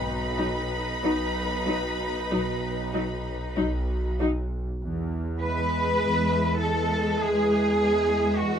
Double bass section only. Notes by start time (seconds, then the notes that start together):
Already playing: B1
1.05 B1
2.32 B1
3.58 B1
4.83 E2
6.03 E2
7.22 E2
8.41 E2